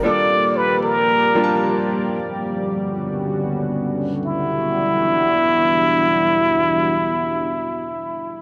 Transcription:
Already playing: ambient pad A#3 D5
0.03 ambient pad F3 G3 G4, grand piano G3 A#3 D4 F4 A4, muted trumpet D5
0.57 muted trumpet B4
0.83 muted trumpet A#4
1.35 grand piano G3 A#3 D4 F4 G4
1.44 grand piano A5
2.14 ambient pad D3 B3 C#4 F#4
4.25 ambient pad E3 G3 B3 D4 F#4, muted trumpet E4

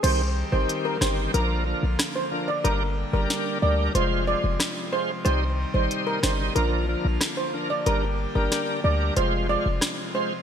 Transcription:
0.03 808-style bass C2, tonewheel organ D#3 C4 G4, pipe organ D#3 G3 C4 G4, steel pan C5, closed hi-hat, crash
0.52 808-style bass G#1, tonewheel organ D#3 C4 G4, steel pan C5
0.69 closed hi-hat
0.85 steel pan A#4
1.01 808-style bass G1, tonewheel organ D#3 C4 G4, steel pan C5, cross-stick, snare
1.34 808-style bass A#1, pipe organ D3 F3 A#3 F4, tonewheel organ F3 D4 A#4, steel pan A#4, closed hi-hat
1.67 tonewheel organ F3 D4 A#4
1.83 808-style bass A#1
1.99 cross-stick, snare, closed hi-hat
2.16 steel pan C5
2.31 tonewheel organ F3 D4 A#4
2.48 steel pan D5
2.64 808-style bass G1, pipe organ G3 G4, tonewheel organ G3 D4 A#4, steel pan A#4, closed hi-hat
3.13 808-style bass G1, tonewheel organ G3 D4 A#4, steel pan A#4
3.30 snare, closed hi-hat
3.62 808-style bass D2, tonewheel organ G3 D4 A#4, steel pan D5
3.95 808-style bass F1, pipe organ C3 F3 G#3 F4, tonewheel organ G#3 F4 C5, steel pan C5, closed hi-hat
4.27 tonewheel organ G#3 F4 C5, steel pan D5
4.44 808-style bass F1
4.60 cross-stick, snare, closed hi-hat
4.93 tonewheel organ G#3 F4 C5, steel pan C5
5.25 808-style bass C2, pipe organ D#3 G3 D#4, tonewheel organ G3 D#4 C5, steel pan C5, closed hi-hat
5.74 808-style bass G#1, tonewheel organ G3 D#4 C5, steel pan C5
5.91 closed hi-hat
6.07 steel pan A#4
6.23 808-style bass G1, tonewheel organ G3 D#4 C5, steel pan C5, cross-stick, snare
6.56 808-style bass A#1, pipe organ D3 F3 A#3 F4, tonewheel organ F3 D4 A#4, steel pan A#4, closed hi-hat
6.88 tonewheel organ F3 D4 A#4
7.05 808-style bass A#1
7.21 cross-stick, snare, closed hi-hat
7.37 steel pan C5
7.54 tonewheel organ F3 D4 A#4
7.70 steel pan D5
7.86 808-style bass G1, pipe organ D3 G3 G4, tonewheel organ G3 D4 A#4, steel pan A#4, closed hi-hat
8.35 808-style bass G1, tonewheel organ G3 D4 A#4, steel pan A#4
8.52 cross-stick, snare, closed hi-hat
8.84 808-style bass D2, tonewheel organ G3 D4 A#4, steel pan D5
9.17 808-style bass F1, pipe organ C3 F3 G#3 F4, tonewheel organ G#3 F4 C5, steel pan C5, closed hi-hat
9.49 tonewheel organ G#3 F4 C5, steel pan D5
9.66 808-style bass F1
9.81 cross-stick, snare, closed hi-hat
10.14 tonewheel organ G#3 F4 C5, steel pan C5

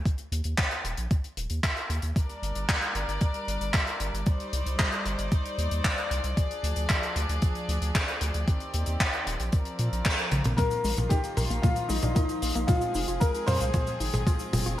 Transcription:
0.06 kick, closed hi-hat
0.18 closed hi-hat
0.32 analog synth bass D#2, closed hi-hat
0.44 analog synth bass D#2, closed hi-hat
0.58 kick, clap, closed hi-hat
0.71 closed hi-hat
0.84 analog synth bass D#1, closed hi-hat
0.97 analog synth bass A#1, closed hi-hat
1.11 kick, closed hi-hat
1.24 closed hi-hat
1.37 analog synth bass D#1, closed hi-hat
1.50 analog synth bass D#2, closed hi-hat
1.63 kick, clap, closed hi-hat
1.77 closed hi-hat
1.90 analog synth bass D#2, closed hi-hat
2.02 analog synth bass D#2, closed hi-hat
2.16 string section G3 D4 A#4 D5, kick, closed hi-hat
2.29 closed hi-hat
2.42 analog synth bass G1, closed hi-hat
2.55 analog synth bass G1, closed hi-hat
2.69 kick, clap, closed hi-hat
2.82 closed hi-hat
2.95 analog synth bass G1, closed hi-hat
3.08 analog synth bass G1, closed hi-hat
3.21 kick, closed hi-hat
3.34 closed hi-hat
3.48 analog synth bass G1, closed hi-hat
3.61 analog synth bass G1, closed hi-hat
3.74 kick, clap, closed hi-hat
3.87 closed hi-hat
4.00 analog synth bass G1, closed hi-hat
4.13 analog synth bass G1, closed hi-hat
4.26 string section D#4 C5 D5, kick, closed hi-hat
4.40 closed hi-hat
4.53 analog synth bass C2, closed hi-hat
4.66 analog synth bass C2, closed hi-hat
4.79 kick, clap, closed hi-hat
4.92 closed hi-hat
5.06 analog synth bass G1, closed hi-hat
5.19 analog synth bass G1, closed hi-hat
5.32 kick, closed hi-hat
5.46 closed hi-hat
5.58 analog synth bass D#2, closed hi-hat
5.71 analog synth bass D#2, closed hi-hat
5.84 kick, clap, closed hi-hat
5.98 closed hi-hat
6.11 analog synth bass C2, closed hi-hat
6.24 analog synth bass C2, closed hi-hat
6.37 string section F3 D4 G#4, kick, closed hi-hat
6.51 closed hi-hat
6.63 analog synth bass D2, closed hi-hat
6.76 analog synth bass D2, closed hi-hat
6.89 kick, clap, closed hi-hat
7.03 closed hi-hat
7.16 analog synth bass D2, closed hi-hat
7.29 analog synth bass D2, closed hi-hat
7.42 kick, closed hi-hat
7.55 closed hi-hat
7.69 analog synth bass D2, closed hi-hat
7.82 analog synth bass D2, closed hi-hat
7.95 kick, clap, closed hi-hat
8.08 closed hi-hat
8.21 analog synth bass D2, closed hi-hat
8.34 analog synth bass D2, closed hi-hat
8.48 string section D#3 C4 G4, kick, closed hi-hat
8.60 closed hi-hat
8.74 analog synth bass D#2, closed hi-hat
8.86 analog synth bass D#2, closed hi-hat
9.00 kick, clap, closed hi-hat
9.13 closed hi-hat
9.27 analog synth bass D#1, closed hi-hat
9.40 analog synth bass A#1, closed hi-hat
9.52 string section F3 C4 A#4, kick, closed hi-hat
9.65 closed hi-hat
9.79 analog synth bass A#2, closed hi-hat
9.92 analog synth bass A#1, closed hi-hat
10.05 kick, clap, closed hi-hat
10.18 closed hi-hat
10.32 analog synth bass A#1, closed hi-hat, high tom
10.44 analog synth bass A#1, closed hi-hat, mid tom
10.57 string section D#3 F3 A#3 F4, synth arpeggio sound A#3, grand piano A#4, kick, closed hi-hat, mid tom, cabasa
10.71 closed hi-hat, cabasa
10.84 analog synth bass A#1, synth arpeggio sound G#3, open hi-hat, cabasa
10.97 analog synth bass A#1, synth arpeggio sound A#3, closed hi-hat, mid tom, cabasa
11.09 synth arpeggio sound D#4, grand piano G4, kick, closed hi-hat, cabasa
11.24 closed hi-hat, cabasa
11.37 analog synth bass A#1, synth arpeggio sound A#4, open hi-hat, mid tom, cabasa
11.50 analog synth bass A#1, synth arpeggio sound A#3, closed hi-hat, cabasa
11.62 synth arpeggio sound A#3, grand piano F4, kick, closed hi-hat, mid tom, cabasa
11.76 closed hi-hat, cabasa
11.88 analog synth bass A#1, synth arpeggio sound G#3, grand piano D#4, open hi-hat, cabasa
12.02 analog synth bass A#1, synth arpeggio sound D4, closed hi-hat, mid tom, cabasa
12.15 synth arpeggio sound A#3, grand piano D#4, kick, closed hi-hat, cabasa
12.29 closed hi-hat, cabasa
12.42 analog synth bass A#1, synth arpeggio sound A#3, open hi-hat, cabasa
12.55 analog synth bass A#1, synth arpeggio sound A#3, closed hi-hat, cabasa
12.67 string section G#3 C4 G#4, grand piano F4, synth arpeggio sound F4, kick, closed hi-hat, mid tom, cabasa
12.81 closed hi-hat, cabasa
12.94 analog synth bass F1, synth arpeggio sound D#4, open hi-hat, cabasa
13.08 analog synth bass F1, synth arpeggio sound F4, closed hi-hat, cabasa
13.20 grand piano A#4, synth arpeggio sound A#4, kick, closed hi-hat, cabasa
13.35 closed hi-hat, cabasa
13.46 analog synth bass F2, grand piano C5, synth arpeggio sound F5, open hi-hat, mid tom, cabasa
13.61 analog synth bass C2, synth arpeggio sound F4, closed hi-hat, cabasa
13.74 synth arpeggio sound F4, kick, closed hi-hat, mid tom, cabasa
13.87 closed hi-hat, cabasa
14.00 analog synth bass G#1, synth arpeggio sound D#4, open hi-hat, cabasa
14.13 analog synth bass G#1, synth arpeggio sound G#4, closed hi-hat, mid tom, cabasa
14.27 synth arpeggio sound F4, kick, closed hi-hat, cabasa
14.39 closed hi-hat, cabasa
14.53 analog synth bass F1, synth arpeggio sound F4, open hi-hat, mid tom, cabasa
14.66 analog synth bass F1, synth arpeggio sound F4, closed hi-hat, cabasa

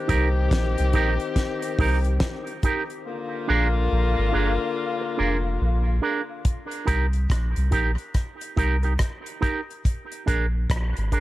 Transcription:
Already playing: horn section D#3 C4 G4
0.08 sub bass C2, clean electric guitar D#4 G4 A#4, kick, closed hi-hat
0.51 sub bass A#1, kick, snare, closed hi-hat
0.78 sub bass C2, closed hi-hat
0.93 sub bass A#1, clean electric guitar D#4 G4 A#4, kick, closed hi-hat
1.20 closed hi-hat
1.36 kick, snare, closed hi-hat
1.62 muted clean electric guitar stroke, closed hi-hat
1.79 sub bass C2, clean electric guitar D#4 G4 A#4, kick, open hi-hat
2.04 closed hi-hat
2.20 kick, snare, closed hi-hat
2.47 closed hi-hat
2.63 clean electric guitar D#4 G4 A#4, kick, closed hi-hat
2.90 closed hi-hat
3.05 horn section D3 A#3 F4
3.48 sub bass A#1, clean electric guitar D4 G#4 A#4
3.92 sub bass A#1
4.19 sub bass G#1
4.32 sub bass G1, clean electric guitar D4 G#4 A#4
5.01 muted clean electric guitar stroke
5.18 sub bass F1, clean electric guitar D4 G#4 A#4
5.61 sub bass A#1
6.02 clean electric guitar D4 G#4 A#4
6.45 kick, closed hi-hat
6.71 closed hi-hat
6.85 sub bass C2, clean electric guitar D#4 G4 A#4, kick, closed hi-hat
7.13 closed hi-hat
7.30 sub bass A#1, kick, cross-stick, closed hi-hat
7.56 sub bass C2, closed hi-hat
7.71 sub bass A#1, clean electric guitar D#4 G4 A#4, kick, closed hi-hat
7.98 closed hi-hat
8.14 kick, cross-stick, closed hi-hat
8.41 closed hi-hat
8.56 sub bass C2, clean electric guitar D#4 G4 A#4, kick, closed hi-hat
8.83 clean electric guitar D#4 G4 A#4, closed hi-hat
8.99 kick, cross-stick, closed hi-hat
9.26 closed hi-hat
9.41 clean electric guitar D#4 G4 A#4, kick, closed hi-hat
9.70 closed hi-hat
9.85 kick, closed hi-hat
10.12 closed hi-hat
10.26 sub bass A#1, clean electric guitar D4 G#4 A#4, kick, closed hi-hat
10.70 sub bass A#1, kick, cross-stick, closed hi-hat
10.97 sub bass G#1, closed hi-hat
11.12 sub bass G1, clean electric guitar D4 G#4 A#4, kick, closed hi-hat

